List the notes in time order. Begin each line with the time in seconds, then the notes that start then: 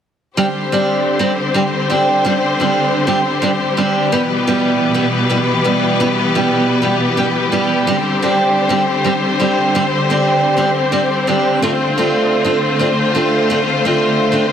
0.37 D3 G3 C4 D4 G4 C5
0.72 G3 C4 D4 G4
1.19 G3 C4 D4 G4
1.54 G3 C4 D4 G4
1.90 G3 C4 D4 G4
2.25 G3 C4 D4 G4
2.60 G3 C4 D4 G4
3.07 G3 C4 D4 G4
3.42 G3 C4 D4 G4
3.77 G3 C4 D4 G4
4.12 B2 E3 G3 B3 E4 G4 B4
4.47 G3 B3 E4 G4
4.94 G3 B3 E4 G4
5.30 G3 B3 E4 G4
5.65 G3 B3 E4 G4
6.00 G3 B3 E4 G4
6.35 G3 B3 E4 G4
6.82 G3 B3 E4 G4
7.17 G3 B3 E4 G4
7.52 G3 B3 E4 G4
7.87 D3 G3 C4 D4 G4 C5
8.22 G3 C4 D4 G4
8.69 G3 C4 D4 G4
9.04 G3 C4 D4 G4
9.40 G3 C4 D4 G4
9.75 G3 C4 D4 G4
10.10 G3 C4 D4 G4
10.57 G3 C4 D4 G4
10.92 G3 C4 D4 G4
11.27 G3 C4 D4 G4
11.62 D3 A3 C4 D4 F4 C5
11.98 A3 C4 D4 F4
12.45 A3 C4 D4 F4
12.79 A3 C4 D4 F4
13.15 A3 C4 D4 F4
13.50 A3 C4 D4 F4
13.85 A3 C4 D4 F4
14.32 A3 C4 D4 F4
14.44 swell